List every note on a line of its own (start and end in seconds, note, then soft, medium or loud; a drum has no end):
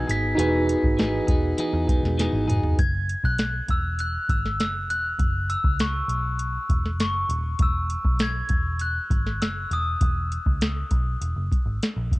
0.00 0.33 D#4 medium
0.00 0.34 F#4 medium
0.00 0.35 G#4 medium
0.00 0.36 B4 medium
0.00 0.12 G#6 loud
0.07 0.33 G#1 medium
0.07 0.37 B3 soft
0.07 0.37 D#4 medium
0.07 0.38 G#4 medium
0.07 2.16 B6 loud
0.07 closed hi-hat medium
0.35 0.74 E1 loud
0.35 0.68 E3 medium
0.35 0.68 B3 medium
0.35 2.73 D#4 medium
0.35 0.68 D#4 loud
0.35 2.74 F#4 medium
0.35 2.74 G#4 medium
0.35 closed hi-hat loud
0.39 0.66 G#4 loud
0.39 2.75 B4 medium
0.67 0.97 B3 soft
0.67 0.98 D#4 medium
0.67 0.98 G#4 medium
0.67 closed hi-hat medium
0.83 1.19 G#1 medium
0.83 kick medium
0.97 1.28 E3 medium
0.97 1.28 B3 medium
0.97 1.28 D#4 medium
0.97 1.26 G#4 medium
0.97 snare loud
0.97 closed hi-hat medium
1.27 1.52 E1 medium
1.27 1.57 B3 soft
1.27 1.58 D#4 medium
1.27 1.58 G#4 medium
1.27 kick loud
1.27 closed hi-hat medium
1.58 1.88 E3 medium
1.58 1.89 B3 medium
1.58 1.88 D#4 loud
1.58 1.86 G#4 medium
1.58 closed hi-hat medium
1.73 1.85 E2 medium
1.87 2.00 E1 medium
1.87 2.18 B3 soft
1.87 2.19 D#4 soft
1.87 2.18 G#4 soft
1.87 kick medium
1.87 closed hi-hat medium
2.03 2.27 E1 medium
2.03 snare soft
2.18 2.48 E3 medium
2.18 2.49 B3 medium
2.18 2.48 D#4 medium
2.18 2.46 G#4 medium
2.18 snare medium
2.18 closed hi-hat medium
2.33 2.45 G#1 medium
2.48 2.72 F1 medium
2.48 2.80 B3 medium
2.48 2.79 D#4 medium
2.48 2.78 G#4 medium
2.48 closed hi-hat medium
2.48 mid tom loud
2.64 floor tom medium
2.79 3.15 F#1 medium
2.79 3.21 G#6 medium
2.79 kick loud
2.79 closed hi-hat loud
3.09 closed hi-hat medium
3.24 3.60 B1 medium
3.24 3.71 F#6 medium
3.24 kick medium
3.38 snare loud
3.38 closed hi-hat medium
3.68 4.16 E1 medium
3.68 4.00 E6 medium
3.68 kick medium
3.68 closed hi-hat medium
3.99 4.30 F#6 medium
3.99 closed hi-hat medium
4.29 4.59 G#1 medium
4.29 4.57 E6 medium
4.29 kick medium
4.29 closed hi-hat medium
4.46 snare soft
4.59 4.88 F#1 medium
4.59 4.91 E6 medium
4.59 snare medium
4.59 closed hi-hat medium
4.88 5.13 E1 medium
4.88 5.52 F#6 medium
4.88 closed hi-hat medium
5.19 5.55 F#1 medium
5.19 kick loud
5.19 closed hi-hat medium
5.50 5.63 E6 medium
5.50 closed hi-hat medium
5.64 6.00 C#2 medium
5.64 kick medium
5.79 6.96 C#6 medium
5.79 snare medium
5.79 closed hi-hat medium
6.08 6.57 B1 medium
6.08 closed hi-hat medium
6.39 closed hi-hat medium
6.69 6.99 E1 medium
6.69 kick medium
6.69 closed hi-hat medium
6.86 snare soft
6.99 7.23 F#1 medium
6.99 7.62 C#6 medium
6.99 snare medium
6.99 closed hi-hat medium
7.29 7.53 D#1 medium
7.29 closed hi-hat medium
7.59 7.96 E1 medium
7.59 8.17 E6 medium
7.59 kick loud
7.59 closed hi-hat medium
7.90 closed hi-hat medium
8.04 8.41 B1 medium
8.04 kick medium
8.19 8.83 G#6 medium
8.19 snare loud
8.19 closed hi-hat medium
8.49 8.98 E1 medium
8.49 kick medium
8.49 closed hi-hat medium
8.79 9.43 F#6 medium
8.79 closed hi-hat medium
9.10 9.40 G#1 medium
9.10 kick medium
9.10 closed hi-hat medium
9.27 snare soft
9.40 9.64 F#1 loud
9.40 9.72 E6 medium
9.40 snare medium
9.40 closed hi-hat medium
9.71 9.95 E1 medium
9.71 11.48 D#6 medium
9.71 closed hi-hat medium
10.01 10.37 E1 medium
10.01 kick loud
10.01 closed hi-hat medium
10.32 closed hi-hat medium
10.46 10.82 C#2 medium
10.46 kick medium
10.61 snare loud
10.61 closed hi-hat medium
10.91 11.15 B1 medium
10.91 kick medium
10.91 closed hi-hat medium
11.21 11.33 E1 medium
11.21 closed hi-hat medium
11.36 11.48 F#1 medium
11.52 kick medium
11.52 closed hi-hat medium
11.66 11.78 G#1 medium
11.83 snare medium
11.83 closed hi-hat medium
11.96 12.08 A#1 medium
12.11 12.19 E1 medium
12.11 kick medium
12.11 closed hi-hat medium